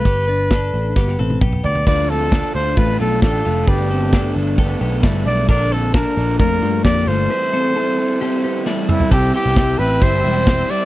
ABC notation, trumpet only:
X:1
M:4/4
L:1/8
Q:1/4=133
K:C
V:1 name="Trumpet"
B6 z d | d A2 c B A A2 | G3 z4 d | d A _B2 B2 d c- |
c6 z E | G G2 B c3 d |]